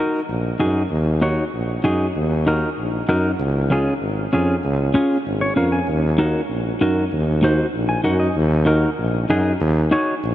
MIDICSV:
0, 0, Header, 1, 3, 480
1, 0, Start_track
1, 0, Key_signature, -6, "minor"
1, 0, Tempo, 310720
1, 1407, Time_signature, 4, 2, 24, 8
1, 15987, End_track
2, 0, Start_track
2, 0, Title_t, "Clean electric guitar"
2, 0, Program_c, 0, 27
2, 0, Note_on_c, 0, 63, 71
2, 0, Note_on_c, 0, 66, 71
2, 0, Note_on_c, 0, 70, 88
2, 304, Note_off_c, 0, 63, 0
2, 304, Note_off_c, 0, 66, 0
2, 306, Note_off_c, 0, 70, 0
2, 919, Note_on_c, 0, 63, 81
2, 927, Note_on_c, 0, 66, 67
2, 930, Note_on_c, 0, 68, 78
2, 1259, Note_off_c, 0, 63, 0
2, 1263, Note_off_c, 0, 68, 0
2, 1265, Note_off_c, 0, 66, 0
2, 1880, Note_on_c, 0, 63, 73
2, 1886, Note_on_c, 0, 66, 73
2, 1893, Note_on_c, 0, 73, 76
2, 2219, Note_off_c, 0, 63, 0
2, 2223, Note_off_c, 0, 66, 0
2, 2225, Note_off_c, 0, 73, 0
2, 2843, Note_on_c, 0, 63, 81
2, 2843, Note_on_c, 0, 66, 70
2, 2854, Note_on_c, 0, 68, 82
2, 3180, Note_off_c, 0, 66, 0
2, 3181, Note_off_c, 0, 63, 0
2, 3186, Note_off_c, 0, 68, 0
2, 3810, Note_on_c, 0, 63, 77
2, 3815, Note_on_c, 0, 66, 64
2, 3825, Note_on_c, 0, 70, 82
2, 4144, Note_off_c, 0, 63, 0
2, 4147, Note_off_c, 0, 66, 0
2, 4150, Note_off_c, 0, 70, 0
2, 4765, Note_on_c, 0, 66, 71
2, 4767, Note_on_c, 0, 63, 75
2, 4776, Note_on_c, 0, 70, 76
2, 5101, Note_off_c, 0, 66, 0
2, 5103, Note_off_c, 0, 63, 0
2, 5107, Note_off_c, 0, 70, 0
2, 5729, Note_on_c, 0, 61, 76
2, 5739, Note_on_c, 0, 65, 71
2, 5746, Note_on_c, 0, 68, 87
2, 6064, Note_off_c, 0, 61, 0
2, 6070, Note_off_c, 0, 65, 0
2, 6072, Note_off_c, 0, 68, 0
2, 6684, Note_on_c, 0, 61, 73
2, 6694, Note_on_c, 0, 65, 71
2, 6707, Note_on_c, 0, 68, 83
2, 7021, Note_off_c, 0, 61, 0
2, 7026, Note_off_c, 0, 65, 0
2, 7033, Note_off_c, 0, 68, 0
2, 7629, Note_on_c, 0, 61, 80
2, 7643, Note_on_c, 0, 65, 70
2, 7645, Note_on_c, 0, 68, 77
2, 7974, Note_off_c, 0, 61, 0
2, 7980, Note_off_c, 0, 68, 0
2, 7982, Note_off_c, 0, 65, 0
2, 8360, Note_on_c, 0, 73, 66
2, 8587, Note_off_c, 0, 73, 0
2, 8588, Note_on_c, 0, 61, 72
2, 8600, Note_on_c, 0, 77, 58
2, 8601, Note_on_c, 0, 65, 66
2, 8609, Note_on_c, 0, 70, 84
2, 8827, Note_off_c, 0, 77, 0
2, 8839, Note_on_c, 0, 80, 69
2, 8935, Note_off_c, 0, 61, 0
2, 8938, Note_off_c, 0, 65, 0
2, 8944, Note_off_c, 0, 70, 0
2, 9066, Note_off_c, 0, 80, 0
2, 9554, Note_on_c, 0, 63, 82
2, 9560, Note_on_c, 0, 66, 78
2, 9562, Note_on_c, 0, 70, 85
2, 9898, Note_off_c, 0, 63, 0
2, 9899, Note_off_c, 0, 66, 0
2, 9901, Note_off_c, 0, 70, 0
2, 10523, Note_on_c, 0, 63, 81
2, 10527, Note_on_c, 0, 66, 76
2, 10538, Note_on_c, 0, 70, 84
2, 10862, Note_off_c, 0, 63, 0
2, 10862, Note_off_c, 0, 66, 0
2, 10869, Note_off_c, 0, 70, 0
2, 11473, Note_on_c, 0, 63, 75
2, 11487, Note_on_c, 0, 66, 74
2, 11497, Note_on_c, 0, 72, 88
2, 11817, Note_off_c, 0, 63, 0
2, 11824, Note_off_c, 0, 66, 0
2, 11827, Note_off_c, 0, 72, 0
2, 12183, Note_on_c, 0, 80, 72
2, 12416, Note_on_c, 0, 63, 79
2, 12418, Note_off_c, 0, 80, 0
2, 12426, Note_on_c, 0, 66, 76
2, 12427, Note_on_c, 0, 70, 89
2, 12427, Note_on_c, 0, 78, 72
2, 12656, Note_off_c, 0, 78, 0
2, 12662, Note_on_c, 0, 75, 72
2, 12769, Note_off_c, 0, 63, 0
2, 12773, Note_off_c, 0, 66, 0
2, 12773, Note_off_c, 0, 70, 0
2, 12897, Note_off_c, 0, 75, 0
2, 13378, Note_on_c, 0, 63, 75
2, 13387, Note_on_c, 0, 66, 68
2, 13397, Note_on_c, 0, 70, 87
2, 13730, Note_off_c, 0, 63, 0
2, 13734, Note_off_c, 0, 66, 0
2, 13739, Note_off_c, 0, 70, 0
2, 14362, Note_on_c, 0, 63, 80
2, 14372, Note_on_c, 0, 68, 89
2, 14373, Note_on_c, 0, 66, 70
2, 14703, Note_off_c, 0, 63, 0
2, 14706, Note_off_c, 0, 66, 0
2, 14706, Note_off_c, 0, 68, 0
2, 15313, Note_on_c, 0, 63, 81
2, 15320, Note_on_c, 0, 66, 75
2, 15329, Note_on_c, 0, 73, 91
2, 15657, Note_off_c, 0, 63, 0
2, 15662, Note_off_c, 0, 66, 0
2, 15663, Note_off_c, 0, 73, 0
2, 15987, End_track
3, 0, Start_track
3, 0, Title_t, "Tuba"
3, 0, Program_c, 1, 58
3, 449, Note_on_c, 1, 34, 86
3, 833, Note_off_c, 1, 34, 0
3, 929, Note_on_c, 1, 42, 85
3, 1312, Note_off_c, 1, 42, 0
3, 1397, Note_on_c, 1, 39, 98
3, 2169, Note_off_c, 1, 39, 0
3, 2374, Note_on_c, 1, 34, 77
3, 2755, Note_off_c, 1, 34, 0
3, 2849, Note_on_c, 1, 42, 79
3, 3232, Note_off_c, 1, 42, 0
3, 3332, Note_on_c, 1, 39, 105
3, 4098, Note_off_c, 1, 39, 0
3, 4291, Note_on_c, 1, 34, 84
3, 4673, Note_off_c, 1, 34, 0
3, 4767, Note_on_c, 1, 42, 93
3, 5151, Note_off_c, 1, 42, 0
3, 5239, Note_on_c, 1, 37, 107
3, 6010, Note_off_c, 1, 37, 0
3, 6192, Note_on_c, 1, 32, 85
3, 6582, Note_off_c, 1, 32, 0
3, 6676, Note_on_c, 1, 41, 88
3, 7064, Note_off_c, 1, 41, 0
3, 7160, Note_on_c, 1, 37, 104
3, 7598, Note_off_c, 1, 37, 0
3, 8131, Note_on_c, 1, 32, 86
3, 8514, Note_off_c, 1, 32, 0
3, 8599, Note_on_c, 1, 41, 84
3, 8987, Note_off_c, 1, 41, 0
3, 9075, Note_on_c, 1, 39, 107
3, 9848, Note_off_c, 1, 39, 0
3, 10026, Note_on_c, 1, 34, 83
3, 10419, Note_off_c, 1, 34, 0
3, 10522, Note_on_c, 1, 42, 86
3, 10909, Note_off_c, 1, 42, 0
3, 11001, Note_on_c, 1, 39, 106
3, 11772, Note_off_c, 1, 39, 0
3, 11959, Note_on_c, 1, 34, 89
3, 12347, Note_off_c, 1, 34, 0
3, 12434, Note_on_c, 1, 42, 91
3, 12824, Note_off_c, 1, 42, 0
3, 12909, Note_on_c, 1, 39, 110
3, 13685, Note_off_c, 1, 39, 0
3, 13879, Note_on_c, 1, 34, 96
3, 14267, Note_off_c, 1, 34, 0
3, 14348, Note_on_c, 1, 42, 92
3, 14740, Note_off_c, 1, 42, 0
3, 14836, Note_on_c, 1, 39, 110
3, 15276, Note_off_c, 1, 39, 0
3, 15801, Note_on_c, 1, 34, 91
3, 15987, Note_off_c, 1, 34, 0
3, 15987, End_track
0, 0, End_of_file